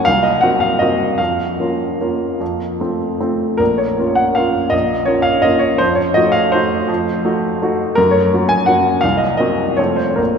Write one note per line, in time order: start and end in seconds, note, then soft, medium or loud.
0.05 0.42 C2 soft
0.05 0.23 F5 medium
0.23 0.42 D#5 medium
0.41 0.76 A#3 soft
0.41 0.77 C4 soft
0.41 0.77 F#4 soft
0.41 0.60 F#5 medium
0.60 0.80 F5 medium
0.79 1.16 A#3 soft
0.79 1.16 C4 soft
0.79 1.16 F#4 soft
0.79 1.19 D#5 medium
1.18 1.58 F2 soft
1.18 3.19 F5 medium
1.60 1.96 A#3 soft
1.60 1.97 C#4 soft
1.60 1.97 F4 soft
2.01 2.37 A#3 soft
2.01 2.37 C#4 soft
2.01 2.37 F4 soft
2.40 2.78 F2 soft
2.80 3.16 A3 soft
2.80 3.17 C4 soft
2.80 3.17 F4 soft
3.21 3.56 A3 soft
3.21 3.56 C4 soft
3.21 3.57 F4 soft
3.57 3.97 A#1 soft
3.57 3.78 A#4 medium
3.78 4.17 C#5 soft
3.99 4.33 A#3 soft
3.99 4.33 C#4 soft
3.99 4.34 F4 soft
4.15 4.36 F#5 medium
4.35 4.70 A#3 soft
4.35 4.70 C#4 soft
4.35 4.70 F4 soft
4.35 4.72 F5 medium
4.70 5.07 A#1 soft
4.70 5.07 D#5 medium
5.05 5.40 A#3 soft
5.05 5.40 C#4 soft
5.05 5.41 F4 soft
5.05 5.25 C#5 medium
5.22 5.43 F5 medium
5.42 5.76 A#3 soft
5.42 5.76 C#4 soft
5.42 5.76 F4 soft
5.42 5.61 D#5 medium
5.59 5.78 C#5 medium
5.78 6.15 F2 soft
5.78 5.97 C5 medium
5.95 6.15 C#5 medium
6.14 6.50 A3 soft
6.14 6.50 D#4 soft
6.14 6.50 F#4 soft
6.14 6.33 D#5 medium
6.32 6.51 F5 medium
6.52 6.86 A3 soft
6.52 6.86 D#4 soft
6.52 6.86 F#4 soft
6.52 7.80 C5 medium
6.88 7.23 F2 medium
7.25 7.58 A3 soft
7.25 7.58 D#4 soft
7.25 7.58 F#4 soft
7.62 7.94 A3 soft
7.62 7.94 D#4 soft
7.62 7.95 F#4 soft
7.95 8.32 F#2 medium
7.95 8.14 A#4 medium
8.11 8.49 C#5 medium
8.33 8.65 A#3 soft
8.33 8.66 C#4 soft
8.33 8.66 F#4 soft
8.49 8.68 G#5 medium
8.66 9.00 A#3 soft
8.66 9.00 C#4 soft
8.66 9.00 F#4 soft
8.66 9.02 F#5 medium
9.01 9.38 C2 soft
9.01 9.20 F5 medium
9.17 9.36 D#5 medium
9.37 9.74 A#3 soft
9.37 9.75 C4 soft
9.37 9.75 F#4 soft
9.37 9.77 D#5 medium
9.77 10.18 F2 soft
9.77 10.16 A3 soft
9.77 10.16 C4 soft
9.77 10.16 F4 soft
9.77 9.98 C#5 medium
9.96 10.09 C5 soft
10.10 10.19 C5 soft
10.16 10.38 A#1 soft
10.16 10.38 A#4 soft